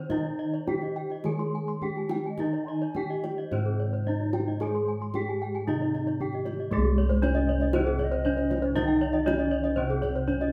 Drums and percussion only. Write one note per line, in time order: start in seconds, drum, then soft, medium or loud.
0.10 kendang high soft
0.10 kendang low soft
0.68 kendang high soft
0.68 kendang low soft
0.81 kendang slap soft
1.10 kendang slap soft
1.24 kendang high soft
1.39 kendang slap soft
1.82 kendang low soft
1.96 kendang slap soft
2.09 kendang high soft
2.24 kendang slap soft
2.38 kendang low soft
2.95 kendang high soft
2.95 kendang low soft
3.09 kendang slap soft
3.24 kendang high soft
3.37 kendang slap soft
3.51 kendang high soft
3.64 kendang slap soft
4.07 kendang low soft
4.19 kendang slap soft
4.33 kendang high soft
4.46 kendang slap soft
4.60 kendang high soft
4.60 kendang low soft
4.74 kendang slap soft
5.00 kendang slap soft
5.14 kendang high soft
5.14 kendang low soft
5.28 kendang slap soft
5.54 kendang slap soft
5.68 kendang high soft
5.82 kendang slap soft
5.95 kendang low soft
6.07 kendang slap soft
6.20 kendang low soft
6.33 kendang slap soft
6.46 kendang high soft
6.58 kendang slap soft
6.71 kendang low medium
7.10 kendang slap soft
7.23 kendang high soft
7.36 kendang slap soft
7.60 kendang slap soft
7.73 kendang high soft
7.99 kendang low soft
8.25 kendang low soft
8.38 kendang slap soft
8.51 kendang high soft
8.51 kendang low soft
8.63 kendang slap soft
8.76 kendang high soft
8.76 kendang low medium
9.14 kendang slap soft
9.27 kendang high soft
9.40 kendang slap soft
9.65 kendang slap soft
10.03 kendang low soft
10.28 kendang low soft
10.41 kendang slap soft